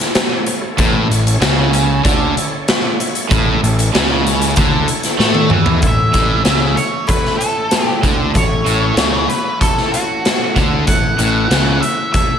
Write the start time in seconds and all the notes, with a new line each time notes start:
Already playing: E4 A4 C#5
0.00 snare, closed hi-hat
0.15 snare, closed hi-hat
0.46 closed hi-hat
0.77 A1 A2 C#4 E4 A4 C#5, kick, closed hi-hat
1.09 A1 A2, closed hi-hat
1.27 closed hi-hat
1.40 C#2 C#3, snare, closed hi-hat
1.73 closed hi-hat
2.03 D2 D3, kick, closed hi-hat
2.37 closed hi-hat
2.68 snare, closed hi-hat
3.00 closed hi-hat
3.15 closed hi-hat
3.31 A1 A2 E4 A4 C#5, kick, closed hi-hat
3.62 A1 A2, closed hi-hat
3.79 closed hi-hat
3.94 C#2 C#3, snare, closed hi-hat
4.27 closed hi-hat
4.41 closed hi-hat
4.56 D2 D3, kick, closed hi-hat
4.88 closed hi-hat
5.03 snare, closed hi-hat
5.19 A2 A3, snare
5.35 high tom
5.50 E2 E3, mid tom
5.66 floor tom
5.82 A1 A2 E3 A3 C#4 E4 A4, kick, closed hi-hat
5.87 E5
6.13 A1 A2, kick, closed hi-hat
6.44 C#2 C#3 A3 C#4 E4 A4, snare, closed hi-hat
6.75 A3 C#4 E4 A4 C#5, closed hi-hat
7.07 A2 E3 A3 C#4 E4 A4 B4, kick, closed hi-hat
7.25 snare
7.38 A4, closed hi-hat
7.71 A3 C#4 E4 A4, snare, closed hi-hat
7.84 G4
8.03 D2 D3, kick, closed hi-hat
8.34 A1 A2 E3 A3 C#4 E4 A4 C#5, kick, closed hi-hat
8.66 A1 A2, closed hi-hat
8.96 C#2 C#3 A3 C#4 E4, snare, closed hi-hat
9.00 A4
9.28 A3 C#4 E4 A4 B4, closed hi-hat
9.61 A2 E3 A3 C#4 E4 A4, kick, closed hi-hat
9.78 snare
9.92 F#4, closed hi-hat
10.25 A3 C#4 E4 A4, snare, closed hi-hat
10.56 D2 D3, kick, closed hi-hat
10.87 A1 A2 E3 A3 C#4 E4 A4 F#5, kick, closed hi-hat
11.18 A1 A2, closed hi-hat
11.50 C#2 C#3 A3 C#4 E4 A4, snare, closed hi-hat
11.81 C#4 E4 A4 E5, closed hi-hat
11.86 A3
12.13 A2 E3 A3 C#4 E4 A4 E5, kick, closed hi-hat